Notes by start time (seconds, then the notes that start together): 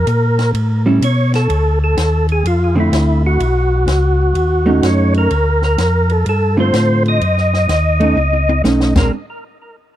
Already playing: A#4
0.07 A#2, hi-hat pedal, ride
0.39 snare, ride
0.54 A2, ride
0.86 G3 C#4 E4
1.02 B2 C#5, hi-hat pedal, ride
1.34 A4, snare, ride
1.49 D2, ride
1.84 A4
1.97 D#2, snare, hi-hat pedal, ride
2.29 G#4, ride
2.44 F2 F4, ride
2.75 D3 A3 C4
2.80 E4
2.92 D2, snare, hi-hat pedal, ride
3.27 F#4
3.40 B1, ride
3.87 C#2, snare, hi-hat pedal, ride
4.35 D#2, ride
4.66 A3 C#4 D#4
4.82 F#2 C#5, snare, hi-hat pedal, ride
5.14 A#4, ride
5.30 D2, ride
5.62 A#4, snare
5.78 F2, snare, hi-hat pedal, ride
6.09 A4, ride
6.26 G2 A4, ride
6.57 D3 A3 C4 F4 C5
6.74 A2, snare, hi-hat pedal, ride
7.05 D#5, ride
7.21 F#2, ride
7.37 snare
7.54 snare
7.68 D#2, snare, hi-hat pedal, ride
8.00 A3 C#4 D#4, ride
8.16 C#2, high tom
8.33 high tom
8.49 high tom
8.64 B1 A3 C#4 D#4, snare, hi-hat pedal
8.80 snare
8.96 A#1 G#3 C4 D4 A#4, kick, snare, crash